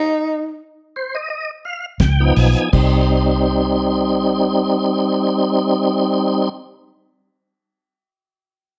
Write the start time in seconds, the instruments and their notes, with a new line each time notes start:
Already playing: tenor saxophone D#4
0.96 tonewheel organ C5
1.15 tonewheel organ D#5
1.30 tonewheel organ D#5
1.65 tonewheel organ F5
2.00 fingered electric bass C#2, tonewheel organ G5, kick, snare, closed hi-hat
2.20 tonewheel organ F3 B3 D#4
2.36 fingered electric bass B1, tonewheel organ G#5, open hi-hat
2.57 closed hi-hat
2.73 fingered electric bass C2, tonewheel organ G3 C4 D#4, kick, crash